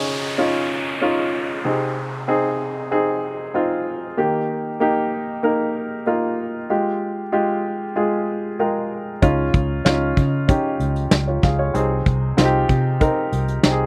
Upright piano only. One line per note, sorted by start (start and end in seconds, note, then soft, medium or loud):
0.00 1.67 C#3 medium
0.00 0.38 C#4 medium
0.00 0.38 D#4 medium
0.00 0.39 F4 medium
0.00 0.27 G#4 medium
0.38 0.89 C#4 medium
0.38 0.90 D#4 medium
0.38 0.90 F4 medium
1.01 1.53 C#4 medium
1.01 1.53 D#4 medium
1.01 1.53 F4 medium
1.65 2.56 C3 medium
1.65 2.16 C4 medium
1.65 2.16 D#4 medium
1.65 2.16 G#4 medium
2.28 2.79 C4 medium
2.28 2.79 D#4 medium
2.28 2.79 G#4 medium
2.91 3.42 C4 medium
2.91 3.42 D#4 medium
2.91 3.43 G#4 medium
3.54 4.05 C4 medium
3.54 4.06 D#4 medium
3.54 4.06 F4 medium
4.17 5.08 D#3 medium
4.17 4.68 A#3 medium
4.17 4.69 D#4 medium
4.17 4.69 G4 medium
4.80 5.31 A#3 medium
4.80 5.32 D#4 medium
4.80 5.32 G4 medium
5.43 5.94 A#3 medium
5.43 5.95 D#4 medium
5.43 5.95 A#4 medium
6.06 6.58 A#3 medium
6.06 6.58 D#4 medium
6.06 6.58 F4 medium
6.70 7.21 G#3 medium
6.70 7.21 F4 medium
6.70 7.21 G4 medium
7.32 7.84 G#3 medium
7.32 7.84 F4 medium
7.32 7.84 G4 medium
7.96 8.47 G#3 medium
7.96 8.47 F4 medium
7.96 8.47 G#4 medium
8.59 9.10 G#3 medium
8.59 9.10 F4 medium
8.59 9.11 A#4 medium
8.59 9.19 G5 medium
9.22 10.13 C#3 medium
9.22 9.73 C#4 medium
9.22 9.73 D#4 medium
9.22 9.74 F4 medium
9.85 10.36 C#4 medium
9.85 10.36 D#4 medium
9.85 10.37 F4 medium
10.48 10.99 C#4 medium
10.48 11.00 D#4 medium
10.48 11.00 G4 medium
11.27 11.43 F4 soft
11.27 11.43 C#5 soft
11.43 11.59 G#4 soft
11.43 11.58 F5 medium
11.59 11.89 F4 medium
11.59 11.89 C#5 medium
11.74 12.65 C3 medium
11.74 12.25 C4 medium
11.74 12.25 D#4 medium
11.74 12.26 G#4 medium
12.37 12.88 C4 medium
12.37 12.89 D#4 medium
12.37 12.44 F4 medium
12.45 12.92 G4 medium
13.00 13.51 C4 medium
13.00 13.52 D#4 medium
13.00 13.52 A#4 medium
13.64 13.86 C4 medium
13.64 13.86 D#4 medium
13.64 13.71 G4 medium
13.71 13.86 G#4 medium